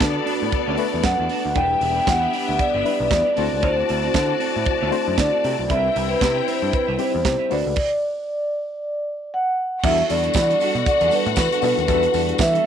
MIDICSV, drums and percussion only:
0, 0, Header, 1, 2, 480
1, 0, Start_track
1, 0, Key_signature, 1, "minor"
1, 0, Tempo, 516351
1, 1450, Time_signature, 4, 2, 24, 8
1, 11770, End_track
2, 0, Start_track
2, 0, Title_t, "Drums"
2, 4, Note_on_c, 9, 36, 113
2, 6, Note_on_c, 9, 38, 126
2, 10, Note_on_c, 9, 42, 71
2, 97, Note_off_c, 9, 36, 0
2, 99, Note_off_c, 9, 38, 0
2, 103, Note_off_c, 9, 42, 0
2, 248, Note_on_c, 9, 46, 61
2, 341, Note_off_c, 9, 46, 0
2, 486, Note_on_c, 9, 42, 62
2, 488, Note_on_c, 9, 36, 109
2, 579, Note_off_c, 9, 42, 0
2, 581, Note_off_c, 9, 36, 0
2, 720, Note_on_c, 9, 46, 69
2, 813, Note_off_c, 9, 46, 0
2, 962, Note_on_c, 9, 38, 115
2, 962, Note_on_c, 9, 42, 64
2, 963, Note_on_c, 9, 36, 108
2, 1055, Note_off_c, 9, 38, 0
2, 1055, Note_off_c, 9, 42, 0
2, 1056, Note_off_c, 9, 36, 0
2, 1203, Note_on_c, 9, 46, 70
2, 1296, Note_off_c, 9, 46, 0
2, 1445, Note_on_c, 9, 42, 74
2, 1447, Note_on_c, 9, 36, 103
2, 1538, Note_off_c, 9, 42, 0
2, 1540, Note_off_c, 9, 36, 0
2, 1685, Note_on_c, 9, 46, 64
2, 1778, Note_off_c, 9, 46, 0
2, 1926, Note_on_c, 9, 36, 122
2, 1930, Note_on_c, 9, 38, 123
2, 1934, Note_on_c, 9, 42, 77
2, 2019, Note_off_c, 9, 36, 0
2, 2023, Note_off_c, 9, 38, 0
2, 2027, Note_off_c, 9, 42, 0
2, 2169, Note_on_c, 9, 46, 72
2, 2262, Note_off_c, 9, 46, 0
2, 2410, Note_on_c, 9, 42, 54
2, 2411, Note_on_c, 9, 36, 113
2, 2503, Note_off_c, 9, 42, 0
2, 2504, Note_off_c, 9, 36, 0
2, 2657, Note_on_c, 9, 46, 64
2, 2750, Note_off_c, 9, 46, 0
2, 2889, Note_on_c, 9, 36, 119
2, 2895, Note_on_c, 9, 38, 113
2, 2895, Note_on_c, 9, 42, 60
2, 2982, Note_off_c, 9, 36, 0
2, 2988, Note_off_c, 9, 38, 0
2, 2988, Note_off_c, 9, 42, 0
2, 3131, Note_on_c, 9, 46, 74
2, 3224, Note_off_c, 9, 46, 0
2, 3371, Note_on_c, 9, 42, 75
2, 3374, Note_on_c, 9, 36, 105
2, 3464, Note_off_c, 9, 42, 0
2, 3467, Note_off_c, 9, 36, 0
2, 3615, Note_on_c, 9, 46, 64
2, 3708, Note_off_c, 9, 46, 0
2, 3851, Note_on_c, 9, 36, 110
2, 3856, Note_on_c, 9, 38, 115
2, 3859, Note_on_c, 9, 42, 73
2, 3944, Note_off_c, 9, 36, 0
2, 3949, Note_off_c, 9, 38, 0
2, 3952, Note_off_c, 9, 42, 0
2, 4095, Note_on_c, 9, 46, 64
2, 4187, Note_off_c, 9, 46, 0
2, 4327, Note_on_c, 9, 42, 60
2, 4335, Note_on_c, 9, 36, 121
2, 4420, Note_off_c, 9, 42, 0
2, 4428, Note_off_c, 9, 36, 0
2, 4575, Note_on_c, 9, 46, 64
2, 4668, Note_off_c, 9, 46, 0
2, 4813, Note_on_c, 9, 36, 115
2, 4814, Note_on_c, 9, 38, 115
2, 4814, Note_on_c, 9, 42, 68
2, 4906, Note_off_c, 9, 36, 0
2, 4907, Note_off_c, 9, 38, 0
2, 4907, Note_off_c, 9, 42, 0
2, 5059, Note_on_c, 9, 46, 69
2, 5152, Note_off_c, 9, 46, 0
2, 5296, Note_on_c, 9, 42, 73
2, 5298, Note_on_c, 9, 36, 105
2, 5389, Note_off_c, 9, 42, 0
2, 5391, Note_off_c, 9, 36, 0
2, 5540, Note_on_c, 9, 46, 65
2, 5633, Note_off_c, 9, 46, 0
2, 5775, Note_on_c, 9, 36, 124
2, 5782, Note_on_c, 9, 38, 115
2, 5786, Note_on_c, 9, 42, 73
2, 5868, Note_off_c, 9, 36, 0
2, 5875, Note_off_c, 9, 38, 0
2, 5879, Note_off_c, 9, 42, 0
2, 6021, Note_on_c, 9, 46, 67
2, 6114, Note_off_c, 9, 46, 0
2, 6257, Note_on_c, 9, 42, 54
2, 6260, Note_on_c, 9, 36, 118
2, 6350, Note_off_c, 9, 42, 0
2, 6353, Note_off_c, 9, 36, 0
2, 6494, Note_on_c, 9, 46, 67
2, 6587, Note_off_c, 9, 46, 0
2, 6738, Note_on_c, 9, 36, 108
2, 6742, Note_on_c, 9, 38, 122
2, 6742, Note_on_c, 9, 42, 57
2, 6831, Note_off_c, 9, 36, 0
2, 6835, Note_off_c, 9, 38, 0
2, 6835, Note_off_c, 9, 42, 0
2, 6979, Note_on_c, 9, 46, 77
2, 7072, Note_off_c, 9, 46, 0
2, 7212, Note_on_c, 9, 49, 96
2, 7220, Note_on_c, 9, 36, 108
2, 7305, Note_off_c, 9, 49, 0
2, 7313, Note_off_c, 9, 36, 0
2, 9143, Note_on_c, 9, 36, 123
2, 9146, Note_on_c, 9, 49, 108
2, 9151, Note_on_c, 9, 54, 61
2, 9236, Note_off_c, 9, 36, 0
2, 9239, Note_off_c, 9, 49, 0
2, 9244, Note_off_c, 9, 54, 0
2, 9278, Note_on_c, 9, 42, 52
2, 9371, Note_off_c, 9, 42, 0
2, 9385, Note_on_c, 9, 54, 63
2, 9387, Note_on_c, 9, 46, 67
2, 9478, Note_off_c, 9, 54, 0
2, 9480, Note_off_c, 9, 46, 0
2, 9517, Note_on_c, 9, 42, 52
2, 9608, Note_on_c, 9, 54, 110
2, 9610, Note_off_c, 9, 42, 0
2, 9619, Note_on_c, 9, 36, 127
2, 9628, Note_on_c, 9, 38, 127
2, 9701, Note_off_c, 9, 54, 0
2, 9712, Note_off_c, 9, 36, 0
2, 9721, Note_off_c, 9, 38, 0
2, 9766, Note_on_c, 9, 42, 46
2, 9856, Note_on_c, 9, 54, 43
2, 9859, Note_off_c, 9, 42, 0
2, 9864, Note_on_c, 9, 46, 68
2, 9949, Note_off_c, 9, 54, 0
2, 9957, Note_off_c, 9, 46, 0
2, 9998, Note_on_c, 9, 42, 50
2, 10091, Note_off_c, 9, 42, 0
2, 10092, Note_on_c, 9, 54, 39
2, 10099, Note_on_c, 9, 36, 124
2, 10106, Note_on_c, 9, 42, 61
2, 10185, Note_off_c, 9, 54, 0
2, 10192, Note_off_c, 9, 36, 0
2, 10199, Note_off_c, 9, 42, 0
2, 10232, Note_on_c, 9, 42, 49
2, 10325, Note_off_c, 9, 42, 0
2, 10329, Note_on_c, 9, 54, 68
2, 10338, Note_on_c, 9, 46, 78
2, 10422, Note_off_c, 9, 54, 0
2, 10431, Note_off_c, 9, 46, 0
2, 10472, Note_on_c, 9, 42, 58
2, 10558, Note_on_c, 9, 54, 111
2, 10565, Note_off_c, 9, 42, 0
2, 10568, Note_on_c, 9, 36, 127
2, 10572, Note_on_c, 9, 38, 127
2, 10651, Note_off_c, 9, 54, 0
2, 10661, Note_off_c, 9, 36, 0
2, 10665, Note_off_c, 9, 38, 0
2, 10712, Note_on_c, 9, 42, 59
2, 10801, Note_on_c, 9, 54, 65
2, 10805, Note_off_c, 9, 42, 0
2, 10817, Note_on_c, 9, 46, 80
2, 10894, Note_off_c, 9, 54, 0
2, 10910, Note_off_c, 9, 46, 0
2, 10957, Note_on_c, 9, 42, 54
2, 11044, Note_on_c, 9, 54, 62
2, 11047, Note_on_c, 9, 36, 112
2, 11048, Note_off_c, 9, 42, 0
2, 11048, Note_on_c, 9, 42, 73
2, 11137, Note_off_c, 9, 54, 0
2, 11140, Note_off_c, 9, 36, 0
2, 11141, Note_off_c, 9, 42, 0
2, 11183, Note_on_c, 9, 42, 52
2, 11275, Note_off_c, 9, 42, 0
2, 11282, Note_on_c, 9, 54, 67
2, 11286, Note_on_c, 9, 46, 74
2, 11375, Note_off_c, 9, 54, 0
2, 11379, Note_off_c, 9, 46, 0
2, 11422, Note_on_c, 9, 42, 57
2, 11511, Note_on_c, 9, 54, 105
2, 11515, Note_off_c, 9, 42, 0
2, 11518, Note_on_c, 9, 36, 122
2, 11526, Note_on_c, 9, 38, 127
2, 11604, Note_off_c, 9, 54, 0
2, 11611, Note_off_c, 9, 36, 0
2, 11619, Note_off_c, 9, 38, 0
2, 11669, Note_on_c, 9, 42, 46
2, 11762, Note_off_c, 9, 42, 0
2, 11770, End_track
0, 0, End_of_file